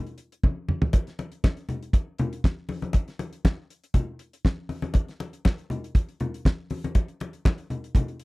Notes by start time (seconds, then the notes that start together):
0.07 closed hi-hat
0.18 closed hi-hat
0.32 closed hi-hat
0.43 kick, high tom, high conga
0.68 mid tom, high conga
0.82 floor tom, high conga
0.93 kick, closed hi-hat, muted conga
1.07 snare, closed hi-hat
1.19 closed hi-hat, muted conga
1.32 closed hi-hat
1.44 kick, snare, clap, high conga
1.57 closed hi-hat
1.69 closed hi-hat, muted conga, low conga
1.83 closed hi-hat
1.93 kick, closed hi-hat, muted conga
2.18 closed hi-hat, low conga
2.33 closed hi-hat
2.44 kick, snare, clap, high conga
2.69 open hi-hat, high conga
2.82 closed hi-hat, high conga
2.93 kick, closed hi-hat, muted conga
3.08 snare, closed hi-hat
3.19 closed hi-hat, muted conga
3.33 closed hi-hat
3.45 kick, snare, clap, high conga
3.70 closed hi-hat
3.84 closed hi-hat
3.94 kick, closed hi-hat, muted conga, low conga
4.19 closed hi-hat
4.33 closed hi-hat
4.45 kick, snare, clap, high conga
4.69 open hi-hat, high conga
4.82 closed hi-hat, high conga
4.94 kick, closed hi-hat, muted conga
5.08 snare, closed hi-hat
5.20 closed hi-hat, muted conga
5.33 closed hi-hat
5.45 kick, snare, clap, high conga
5.58 closed hi-hat
5.70 closed hi-hat, low conga
5.84 closed hi-hat
5.95 kick, closed hi-hat, muted conga
6.09 closed hi-hat
6.20 closed hi-hat, low conga
6.34 closed hi-hat
6.45 kick, snare, clap, high conga
6.70 open hi-hat, high conga
6.84 closed hi-hat, high conga
6.95 kick, closed hi-hat, muted conga
7.08 closed hi-hat
7.20 closed hi-hat, muted conga
7.33 closed hi-hat
7.45 kick, snare, clap, high conga
7.58 closed hi-hat
7.70 closed hi-hat, low conga
7.84 closed hi-hat
7.95 kick, closed hi-hat, muted conga, low conga
8.08 closed hi-hat
8.20 closed hi-hat